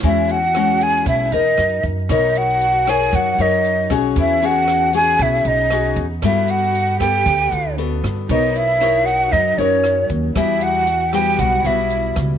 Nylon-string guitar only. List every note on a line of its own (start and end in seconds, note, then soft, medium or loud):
0.03 1.04 E3 medium
0.03 0.37 G#3 medium
0.03 0.37 C#4 medium
0.03 0.37 F#4 medium
0.56 1.29 G#3 medium
0.56 1.29 C#4 medium
0.56 1.29 F#4 medium
1.07 1.56 B2 medium
1.33 2.06 A#4 medium
1.33 2.06 D#5 medium
2.10 3.11 B3 medium
2.10 2.83 D#4 medium
2.10 2.83 A#4 medium
2.10 2.83 C#5 medium
2.87 3.35 D#4 medium
2.87 3.35 A#4 medium
2.87 3.35 C#5 medium
3.13 4.14 F#3 medium
3.39 3.87 D#4 medium
3.39 3.87 A#4 medium
3.39 3.87 C#5 medium
3.90 4.42 C#4 medium
3.90 4.42 F#4 medium
3.90 4.42 G#4 medium
4.18 5.18 E3 medium
4.43 4.90 C#4 medium
4.43 4.90 F#4 medium
4.43 4.90 G#4 medium
4.94 5.67 C#4 medium
4.94 5.67 F#4 medium
4.94 5.68 G#4 medium
5.20 6.20 B3 medium
5.71 6.05 C#4 medium
5.71 6.05 F#4 medium
5.71 6.05 G#4 medium
6.24 7.24 G3 medium
6.24 6.97 B3 medium
6.24 6.97 F#4 medium
6.24 6.97 A4 medium
7.01 7.74 B3 medium
7.01 7.74 A4 medium
7.27 8.27 D3 medium
7.78 8.27 B3 medium
7.78 8.28 F#4 medium
7.78 8.28 A4 medium
8.30 9.31 B3 medium
8.30 8.77 D#4 medium
8.30 8.77 A#4 medium
8.30 8.78 C#5 medium
8.81 9.54 D#4 medium
8.81 9.55 A#4 medium
8.81 9.55 C#5 medium
9.33 10.34 F#3 medium
9.58 10.32 D#4 medium
9.58 10.32 A#4 medium
9.58 10.32 C#5 medium
10.36 11.37 E3 medium
10.36 10.87 G3 medium
10.36 10.87 B3 medium
10.36 10.88 F#4 medium
11.13 11.61 G3 medium
11.13 11.61 B3 medium
11.13 11.61 F#4 medium
11.40 12.38 B2 medium
11.65 12.38 G3 medium
11.65 12.38 B3 medium
11.65 12.38 F#4 medium